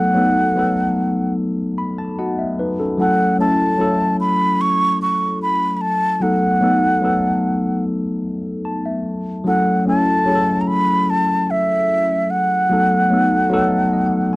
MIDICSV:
0, 0, Header, 1, 3, 480
1, 0, Start_track
1, 0, Tempo, 809717
1, 1772, Time_signature, 4, 2, 24, 8
1, 8513, End_track
2, 0, Start_track
2, 0, Title_t, "Flute"
2, 0, Program_c, 0, 73
2, 0, Note_on_c, 0, 78, 99
2, 792, Note_off_c, 0, 78, 0
2, 1780, Note_on_c, 0, 78, 90
2, 1999, Note_off_c, 0, 78, 0
2, 2017, Note_on_c, 0, 81, 91
2, 2469, Note_off_c, 0, 81, 0
2, 2493, Note_on_c, 0, 83, 106
2, 2733, Note_on_c, 0, 85, 112
2, 2742, Note_off_c, 0, 83, 0
2, 2971, Note_off_c, 0, 85, 0
2, 2975, Note_on_c, 0, 85, 101
2, 3195, Note_off_c, 0, 85, 0
2, 3214, Note_on_c, 0, 83, 108
2, 3419, Note_off_c, 0, 83, 0
2, 3419, Note_on_c, 0, 83, 77
2, 3445, Note_on_c, 0, 81, 105
2, 3454, Note_off_c, 0, 83, 0
2, 3687, Note_on_c, 0, 78, 97
2, 3696, Note_off_c, 0, 81, 0
2, 4647, Note_off_c, 0, 78, 0
2, 5616, Note_on_c, 0, 78, 103
2, 5837, Note_off_c, 0, 78, 0
2, 5855, Note_on_c, 0, 81, 109
2, 6290, Note_on_c, 0, 82, 80
2, 6299, Note_off_c, 0, 81, 0
2, 6327, Note_on_c, 0, 83, 113
2, 6336, Note_off_c, 0, 82, 0
2, 6580, Note_on_c, 0, 81, 111
2, 6589, Note_off_c, 0, 83, 0
2, 6820, Note_on_c, 0, 76, 104
2, 6829, Note_off_c, 0, 81, 0
2, 7294, Note_on_c, 0, 78, 107
2, 7303, Note_off_c, 0, 76, 0
2, 8513, Note_off_c, 0, 78, 0
2, 8513, End_track
3, 0, Start_track
3, 0, Title_t, "Tine electric piano"
3, 0, Program_c, 1, 4
3, 0, Control_c, 1, 64, 127
3, 0, Note_on_c, 1, 54, 70
3, 0, Note_on_c, 1, 57, 66
3, 0, Note_on_c, 1, 59, 67
3, 0, Note_on_c, 1, 63, 60
3, 0, Note_on_c, 1, 69, 79
3, 84, Note_off_c, 1, 54, 0
3, 84, Note_on_c, 1, 54, 71
3, 90, Note_off_c, 1, 57, 0
3, 90, Note_on_c, 1, 57, 60
3, 95, Note_off_c, 1, 59, 0
3, 95, Note_on_c, 1, 59, 65
3, 97, Note_off_c, 1, 63, 0
3, 97, Note_on_c, 1, 63, 64
3, 105, Note_off_c, 1, 69, 0
3, 105, Note_on_c, 1, 69, 72
3, 262, Note_off_c, 1, 54, 0
3, 264, Note_off_c, 1, 57, 0
3, 267, Note_off_c, 1, 59, 0
3, 268, Note_off_c, 1, 63, 0
3, 272, Note_off_c, 1, 69, 0
3, 327, Note_on_c, 1, 54, 68
3, 332, Note_on_c, 1, 57, 65
3, 337, Note_on_c, 1, 59, 75
3, 343, Note_on_c, 1, 63, 63
3, 349, Note_on_c, 1, 69, 74
3, 1016, Note_off_c, 1, 54, 0
3, 1018, Note_off_c, 1, 57, 0
3, 1021, Note_off_c, 1, 59, 0
3, 1024, Note_off_c, 1, 63, 0
3, 1027, Note_off_c, 1, 69, 0
3, 1056, Note_on_c, 1, 83, 70
3, 1166, Note_off_c, 1, 83, 0
3, 1176, Note_on_c, 1, 81, 71
3, 1286, Note_off_c, 1, 81, 0
3, 1296, Note_on_c, 1, 78, 62
3, 1298, Note_on_c, 1, 75, 59
3, 1299, Note_on_c, 1, 66, 46
3, 1406, Note_off_c, 1, 78, 0
3, 1415, Note_on_c, 1, 76, 61
3, 1523, Note_off_c, 1, 66, 0
3, 1523, Note_off_c, 1, 75, 0
3, 1537, Note_on_c, 1, 71, 72
3, 1542, Note_on_c, 1, 63, 58
3, 1649, Note_off_c, 1, 71, 0
3, 1651, Note_off_c, 1, 63, 0
3, 1657, Note_on_c, 1, 69, 68
3, 1661, Note_on_c, 1, 61, 54
3, 1749, Note_off_c, 1, 76, 0
3, 1765, Note_on_c, 1, 54, 69
3, 1770, Note_off_c, 1, 61, 0
3, 1771, Note_on_c, 1, 57, 64
3, 1777, Note_on_c, 1, 61, 64
3, 1779, Control_c, 1, 64, 0
3, 1781, Note_off_c, 1, 69, 0
3, 1782, Note_on_c, 1, 64, 66
3, 1788, Note_on_c, 1, 69, 79
3, 1899, Control_c, 1, 64, 127
3, 1940, Note_off_c, 1, 54, 0
3, 1942, Note_off_c, 1, 57, 0
3, 1945, Note_off_c, 1, 61, 0
3, 1948, Note_off_c, 1, 64, 0
3, 1951, Note_off_c, 1, 69, 0
3, 2004, Note_on_c, 1, 54, 66
3, 2009, Note_on_c, 1, 57, 59
3, 2014, Note_on_c, 1, 61, 61
3, 2020, Note_on_c, 1, 64, 67
3, 2025, Note_on_c, 1, 69, 76
3, 2179, Note_off_c, 1, 54, 0
3, 2181, Note_off_c, 1, 57, 0
3, 2184, Note_off_c, 1, 61, 0
3, 2187, Note_off_c, 1, 64, 0
3, 2189, Note_off_c, 1, 69, 0
3, 2240, Note_on_c, 1, 54, 75
3, 2245, Note_on_c, 1, 57, 67
3, 2250, Note_on_c, 1, 61, 71
3, 2255, Note_on_c, 1, 64, 71
3, 2260, Note_on_c, 1, 69, 92
3, 2931, Note_off_c, 1, 54, 0
3, 2933, Note_off_c, 1, 57, 0
3, 2935, Note_off_c, 1, 61, 0
3, 2938, Note_off_c, 1, 64, 0
3, 2940, Note_off_c, 1, 69, 0
3, 3677, Note_on_c, 1, 54, 69
3, 3683, Note_on_c, 1, 57, 61
3, 3686, Note_on_c, 1, 59, 60
3, 3692, Note_on_c, 1, 63, 69
3, 3696, Control_c, 1, 64, 0
3, 3698, Note_on_c, 1, 69, 70
3, 3802, Control_c, 1, 64, 127
3, 3854, Note_off_c, 1, 54, 0
3, 3857, Note_off_c, 1, 57, 0
3, 3859, Note_off_c, 1, 59, 0
3, 3861, Note_off_c, 1, 63, 0
3, 3864, Note_off_c, 1, 69, 0
3, 3916, Note_on_c, 1, 54, 75
3, 3920, Note_on_c, 1, 57, 56
3, 3925, Note_on_c, 1, 59, 66
3, 3932, Note_on_c, 1, 63, 65
3, 3935, Note_on_c, 1, 69, 78
3, 4094, Note_off_c, 1, 54, 0
3, 4096, Note_off_c, 1, 57, 0
3, 4098, Note_off_c, 1, 59, 0
3, 4102, Note_off_c, 1, 63, 0
3, 4103, Note_off_c, 1, 69, 0
3, 4157, Note_on_c, 1, 54, 72
3, 4163, Note_on_c, 1, 57, 67
3, 4169, Note_on_c, 1, 59, 70
3, 4171, Note_on_c, 1, 63, 67
3, 4178, Note_on_c, 1, 69, 82
3, 4849, Note_off_c, 1, 54, 0
3, 4853, Note_off_c, 1, 57, 0
3, 4855, Note_off_c, 1, 59, 0
3, 4856, Note_off_c, 1, 63, 0
3, 4860, Note_off_c, 1, 69, 0
3, 5128, Note_on_c, 1, 81, 65
3, 5240, Note_off_c, 1, 81, 0
3, 5249, Note_on_c, 1, 76, 64
3, 5586, Note_off_c, 1, 76, 0
3, 5598, Note_on_c, 1, 54, 78
3, 5604, Note_on_c, 1, 57, 60
3, 5609, Note_on_c, 1, 61, 63
3, 5615, Note_on_c, 1, 64, 60
3, 5617, Control_c, 1, 64, 0
3, 5618, Note_on_c, 1, 69, 77
3, 5703, Control_c, 1, 64, 127
3, 5775, Note_off_c, 1, 54, 0
3, 5779, Note_off_c, 1, 57, 0
3, 5781, Note_off_c, 1, 61, 0
3, 5784, Note_off_c, 1, 64, 0
3, 5785, Note_off_c, 1, 69, 0
3, 5842, Note_on_c, 1, 54, 65
3, 5850, Note_on_c, 1, 57, 56
3, 5852, Note_on_c, 1, 61, 60
3, 5858, Note_on_c, 1, 64, 60
3, 5864, Note_on_c, 1, 69, 72
3, 6018, Note_off_c, 1, 54, 0
3, 6021, Note_off_c, 1, 57, 0
3, 6023, Note_off_c, 1, 61, 0
3, 6026, Note_off_c, 1, 64, 0
3, 6029, Note_off_c, 1, 69, 0
3, 6077, Note_on_c, 1, 54, 79
3, 6084, Note_on_c, 1, 57, 68
3, 6088, Note_on_c, 1, 61, 74
3, 6093, Note_on_c, 1, 64, 69
3, 6099, Note_on_c, 1, 68, 62
3, 6133, Note_off_c, 1, 68, 0
3, 6137, Note_on_c, 1, 69, 87
3, 6772, Note_off_c, 1, 54, 0
3, 6775, Note_off_c, 1, 57, 0
3, 6777, Note_off_c, 1, 61, 0
3, 6780, Note_off_c, 1, 64, 0
3, 6802, Note_off_c, 1, 69, 0
3, 7526, Note_on_c, 1, 54, 74
3, 7531, Note_on_c, 1, 57, 64
3, 7536, Note_on_c, 1, 59, 61
3, 7541, Control_c, 1, 64, 0
3, 7543, Note_on_c, 1, 63, 63
3, 7545, Note_on_c, 1, 69, 85
3, 7629, Control_c, 1, 64, 127
3, 7702, Note_off_c, 1, 54, 0
3, 7705, Note_off_c, 1, 57, 0
3, 7707, Note_off_c, 1, 59, 0
3, 7711, Note_off_c, 1, 63, 0
3, 7712, Note_off_c, 1, 69, 0
3, 7767, Note_on_c, 1, 54, 68
3, 7772, Note_on_c, 1, 57, 63
3, 7776, Note_on_c, 1, 59, 62
3, 7781, Note_on_c, 1, 63, 60
3, 7787, Note_on_c, 1, 69, 72
3, 7943, Note_off_c, 1, 54, 0
3, 7945, Note_off_c, 1, 57, 0
3, 7948, Note_off_c, 1, 59, 0
3, 7950, Note_off_c, 1, 63, 0
3, 7953, Note_off_c, 1, 69, 0
3, 8002, Note_on_c, 1, 54, 95
3, 8009, Note_on_c, 1, 57, 82
3, 8012, Note_on_c, 1, 59, 85
3, 8019, Note_on_c, 1, 63, 84
3, 8024, Note_on_c, 1, 69, 109
3, 8259, Note_on_c, 1, 75, 69
3, 8332, Note_off_c, 1, 75, 0
3, 8336, Note_on_c, 1, 78, 65
3, 8486, Note_off_c, 1, 78, 0
3, 8513, Note_off_c, 1, 54, 0
3, 8513, Note_off_c, 1, 57, 0
3, 8513, Note_off_c, 1, 59, 0
3, 8513, Note_off_c, 1, 63, 0
3, 8513, Note_off_c, 1, 69, 0
3, 8513, End_track
0, 0, End_of_file